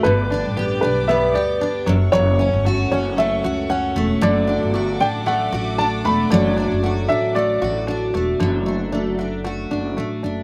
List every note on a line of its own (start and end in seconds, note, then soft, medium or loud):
0.00 0.11 A3 medium
0.00 0.10 D4 medium
0.00 0.14 D4 medium
0.00 0.11 F#4 medium
0.00 0.78 B4 loud
0.04 0.42 G1 loud
0.04 1.87 G2 medium
0.04 1.86 D3 medium
0.04 1.86 B4 medium
0.04 1.86 D5 medium
0.04 1.86 G5 medium
0.04 1.86 D6 medium
0.30 0.82 D4 medium
0.30 0.81 D4 medium
0.45 0.80 A1 medium
0.57 1.08 B3 medium
0.57 1.34 G4 medium
0.81 1.31 B1 medium
0.81 1.60 D4 medium
0.81 1.09 B4 medium
1.08 1.93 B3 medium
1.08 1.35 E5 loud
1.34 1.83 D2 loud
1.34 1.93 G4 medium
1.34 1.83 D5 medium
1.61 1.93 D4 medium
1.86 2.11 F#1 loud
1.86 2.12 F#2 medium
1.86 2.12 F#3 medium
1.86 8.36 A4 medium
1.86 4.20 C#5 medium
1.86 4.20 F#5 medium
1.86 4.20 C#6 medium
2.12 2.50 F#1 loud
2.12 4.22 F#2 loud
2.12 4.21 F#3 loud
2.12 2.61 C#5 loud
2.39 2.90 C#4 medium
2.39 2.91 C#4 medium
2.53 2.88 G1 medium
2.65 3.17 A3 medium
2.65 3.44 F#4 medium
2.91 3.40 F#1 medium
2.91 3.68 C#4 medium
2.91 3.69 C#4 medium
2.91 2.97 C#5 medium
3.17 3.95 A3 medium
3.17 3.96 A3 medium
3.17 3.72 E5 medium
3.44 3.92 C#2 medium
3.44 4.84 F#4 medium
3.44 4.73 F#4 medium
3.69 4.27 C#4 medium
3.69 4.28 C#4 medium
3.69 4.07 F#5 medium
3.96 4.20 E1 medium
3.96 4.74 A3 medium
3.96 5.26 A3 medium
4.21 4.59 F#1 loud
4.21 6.29 D3 medium
4.21 6.31 F#3 loud
4.21 5.03 D5 medium
4.21 8.37 D5 medium
4.21 8.37 F#5 medium
4.21 8.37 D6 loud
4.47 5.00 D4 medium
4.63 4.97 G1 medium
4.74 5.26 A3 medium
4.74 5.52 F#4 medium
5.00 5.49 A1 medium
5.00 5.78 D4 medium
5.00 5.52 D4 medium
5.00 5.06 G5 loud
5.26 6.05 A3 medium
5.26 6.04 A3 medium
5.26 5.80 F#5 loud
5.52 6.01 A1 medium
5.52 7.60 F#4 medium
5.52 6.83 F#4 medium
5.78 6.56 D4 medium
5.78 6.57 D4 medium
5.78 5.84 A5 loud
6.04 6.29 E1 loud
6.04 6.82 A3 medium
6.04 7.36 A3 medium
6.04 6.32 B5 loud
6.30 6.68 F#1 loud
6.30 8.38 D3 medium
6.30 8.40 F#3 medium
6.30 6.80 D5 medium
6.57 7.09 D4 medium
6.71 7.06 F#1 medium
6.83 7.35 A3 medium
6.83 7.61 F#4 medium
7.08 7.58 A1 medium
7.08 7.87 D4 medium
7.08 7.88 D4 medium
7.08 7.36 E5 loud
7.35 8.13 A3 medium
7.35 8.14 A3 medium
7.35 7.84 D5 loud
7.62 8.10 A1 medium
7.62 7.87 F#4 medium
7.62 9.44 F#4 medium
7.87 8.92 D4 medium
7.87 8.66 D4 medium
8.14 8.38 E1 medium
8.14 8.66 A3 medium
8.14 8.92 A3 medium
8.40 9.67 F#1 loud
8.40 10.43 D3 medium
8.40 10.43 F#3 medium
8.66 9.44 A3 medium
8.66 9.18 D4 medium
8.92 9.97 A3 medium
8.92 9.70 D4 medium
9.18 9.71 D4 medium
9.18 10.22 F#4 medium
9.44 9.96 A3 medium
9.44 10.43 F#4 medium
9.71 9.95 F#1 medium
9.71 10.23 D4 medium
9.97 10.22 A1 medium
9.97 10.43 A3 medium
10.23 10.43 F#1 medium
10.23 10.43 D4 medium